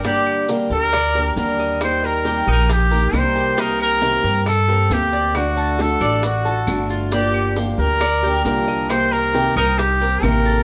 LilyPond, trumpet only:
\new Staff \with { instrumentName = "Trumpet" } { \time 4/4 \key g \minor \tempo 4 = 136 g'4 r8 bes'4. bes'4 | c''8 bes'4 bes'8 g'4 c''4 | bes'8 bes'4. a'4 g'4 | fis'4 a'4 fis'4. r8 |
g'4 r8 bes'4. bes'4 | c''8 bes'4 bes'8 g'4 bes'4 | }